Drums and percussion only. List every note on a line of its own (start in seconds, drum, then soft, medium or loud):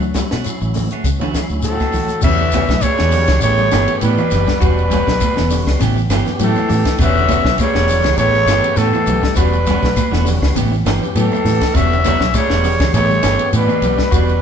0.02 shekere soft
0.14 kick medium
0.14 snare medium
0.14 closed hi-hat soft
0.14 high conga medium
0.14 shekere medium
0.31 snare medium
0.31 shekere soft
0.44 closed hi-hat medium
0.44 claves medium
0.44 shekere medium
0.61 shekere soft
0.74 open hi-hat medium
0.74 high conga medium
0.74 low conga medium
0.74 shekere medium
0.91 closed hi-hat soft
0.91 claves medium
0.91 shekere soft
1.04 kick medium
1.04 closed hi-hat medium
1.04 shekere medium
1.21 high conga medium
1.21 shekere soft
1.34 kick medium
1.34 snare medium
1.34 closed hi-hat soft
1.34 low conga medium
1.34 claves medium
1.34 shekere medium
1.49 shekere soft
1.62 closed hi-hat medium
1.62 high conga medium
1.62 shekere medium
1.79 kick medium
1.79 snare soft
1.79 high conga medium
1.79 claves medium
1.79 shekere soft
1.92 kick medium
1.92 open hi-hat medium
1.92 low conga medium
1.92 shekere medium
2.09 closed hi-hat medium
2.09 shekere soft
2.22 kick loud
2.22 crash loud
2.22 claves medium
2.22 shekere medium
2.38 shekere soft
2.52 kick medium
2.52 snare soft
2.52 ride bell medium
2.52 high conga loud
2.52 shekere medium
2.68 kick medium
2.68 snare medium
2.68 high conga medium
2.68 shekere soft
2.81 kick medium
2.81 ride bell medium
2.81 high conga medium
2.81 claves medium
2.81 shekere medium
2.97 snare medium
2.97 shekere soft
3.11 open hi-hat medium
3.11 low conga loud
3.11 shekere medium
3.28 kick medium
3.28 snare medium
3.28 ride bell medium
3.28 claves medium
3.28 shekere soft
3.41 ride bell soft
3.41 shekere medium
3.58 shekere soft
3.71 snare medium
3.71 ride bell medium
3.71 high conga loud
3.71 claves medium
3.71 shekere medium
3.88 ride bell medium
3.88 shekere soft
4.01 ride bell medium
4.01 shekere medium
4.18 high conga medium
4.18 claves medium
4.18 shekere soft
4.31 snare soft
4.31 ride bell medium
4.31 high conga medium
4.31 low conga medium
4.31 shekere medium
4.47 kick medium
4.47 snare medium
4.47 shekere soft
4.61 kick loud
4.61 ride bell medium
4.61 claves medium
4.61 shekere medium
4.78 shekere soft
4.91 kick medium
4.91 snare soft
4.91 ride bell medium
4.91 high conga loud
4.91 shekere medium
5.07 kick medium
5.07 snare medium
5.07 shekere soft
5.21 kick medium
5.21 ride bell medium
5.21 high conga loud
5.21 claves medium
5.21 shekere loud
5.37 snare medium
5.37 shekere soft
5.50 open hi-hat medium
5.50 low conga loud
5.50 shekere medium
5.67 kick medium
5.67 snare medium
5.67 claves medium
5.67 shekere soft
5.80 snare soft
5.80 ride bell medium
5.80 shekere medium
5.97 shekere soft
6.10 snare medium
6.10 ride bell medium
6.10 high conga loud
6.10 claves medium
6.10 shekere medium
6.26 snare soft
6.26 low conga medium
6.26 shekere soft
6.39 ride bell medium
6.39 shekere medium
6.56 high conga medium
6.56 claves medium
6.56 shekere soft
6.69 open hi-hat medium
6.69 low conga loud
6.69 shekere medium
6.85 kick medium
6.85 snare medium
6.85 ride bell medium
6.85 shekere soft
6.98 kick loud
6.98 ride bell medium
6.98 claves medium
6.98 shekere medium
7.17 shekere soft
7.28 kick medium
7.28 ride bell medium
7.28 high conga loud
7.28 shekere medium
7.45 kick medium
7.45 snare medium
7.45 shekere soft
7.58 kick medium
7.58 snare soft
7.58 ride bell medium
7.58 high conga loud
7.58 claves medium
7.58 shekere medium
7.75 snare medium
7.75 shekere soft
7.88 open hi-hat medium
7.88 low conga medium
7.88 shekere medium
8.04 kick medium
8.04 snare medium
8.04 ride bell medium
8.04 claves medium
8.04 shekere soft
8.18 ride bell soft
8.18 shekere medium
8.35 shekere soft
8.47 snare medium
8.47 ride bell medium
8.47 high conga loud
8.47 claves medium
8.47 shekere medium
8.64 ride bell medium
8.64 shekere soft
8.76 snare soft
8.76 ride bell medium
8.76 shekere loud
8.93 high conga medium
8.93 claves medium
8.93 shekere soft
9.06 ride bell medium
9.06 high conga medium
9.06 low conga medium
9.06 shekere medium
9.23 kick medium
9.23 snare medium
9.23 shekere soft
9.36 kick loud
9.36 ride bell medium
9.36 claves medium
9.36 shekere medium
9.53 shekere soft
9.66 kick medium
9.66 snare soft
9.66 ride bell medium
9.66 high conga loud
9.66 shekere medium
9.83 kick medium
9.83 snare medium
9.83 high conga medium
9.83 shekere soft
9.96 kick medium
9.96 ride bell soft
9.96 high conga medium
9.96 claves medium
9.96 shekere medium
10.13 snare medium
10.13 shekere soft
10.27 snare soft
10.27 open hi-hat medium
10.27 low conga medium
10.27 shekere medium
10.42 kick medium
10.42 snare medium
10.42 claves medium
10.42 shekere soft
10.56 ride bell medium
10.56 high conga medium
10.56 shekere medium
10.73 shekere soft
10.86 snare medium
10.86 ride bell medium
10.86 high conga loud
10.86 claves medium
10.86 shekere medium
11.03 low conga medium
11.03 shekere soft
11.15 ride bell medium
11.15 shekere medium
11.32 high conga medium
11.32 claves medium
11.32 shekere soft
11.46 snare soft
11.46 open hi-hat medium
11.46 high conga medium
11.46 low conga medium
11.46 shekere medium
11.61 kick medium
11.61 snare medium
11.61 ride bell medium
11.61 shekere soft
11.75 kick loud
11.75 ride bell medium
11.75 claves medium
11.75 shekere medium
11.93 shekere soft
12.04 kick medium
12.04 snare soft
12.04 ride bell medium
12.04 high conga loud
12.04 shekere medium
12.20 kick medium
12.20 snare medium
12.20 shekere soft
12.34 kick medium
12.34 snare soft
12.34 ride bell medium
12.34 high conga loud
12.34 claves medium
12.34 shekere medium
12.50 snare medium
12.50 shekere soft
12.64 open hi-hat medium
12.64 low conga loud
12.64 shekere medium
12.80 kick medium
12.80 snare medium
12.80 ride bell medium
12.80 claves medium
12.80 shekere soft
12.94 snare soft
12.94 ride bell medium
12.94 shekere medium
13.11 shekere soft
13.23 snare medium
13.23 ride bell medium
13.23 high conga loud
13.23 claves medium
13.23 shekere medium
13.39 ride bell medium
13.39 shekere soft
13.53 ride bell medium
13.53 shekere medium
13.68 high conga medium
13.68 claves medium
13.68 shekere soft
13.82 ride bell medium
13.82 high conga medium
13.82 low conga medium
13.82 shekere medium
13.98 kick medium
13.98 snare medium
13.98 shekere soft
14.12 kick loud
14.12 ride bell medium
14.12 claves medium
14.12 shekere medium
14.29 shekere soft